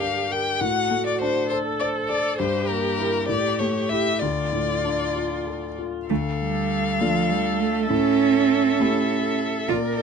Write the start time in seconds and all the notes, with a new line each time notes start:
Already playing: G2 D3 G4 A#4
0.00 D4 F5
0.31 A#4 G5
0.61 A2 F#4 F#5
0.91 A3
1.07 D5
1.21 D4 C5
1.49 A4 C5
1.80 C5 D5
2.09 A4 D5
2.38 G2 G4 C5
2.67 A#3 A#4
2.99 E4 A#4
3.28 A2 G4 D5
3.59 A3 C#5
3.89 E4 G4 E5
4.20 D2 F4 D5
4.53 A2
4.85 D4
5.16 F4
5.47 A4
5.78 F4
6.08 D2 A3 A4 F5
6.40 G3
7.01 F3 A3 D4 F4
7.31 G3
7.60 A3
7.89 A2 C#4 E5
8.80 A3 E4 G4
9.68 A#2 F4 A#4 D5
9.98 E4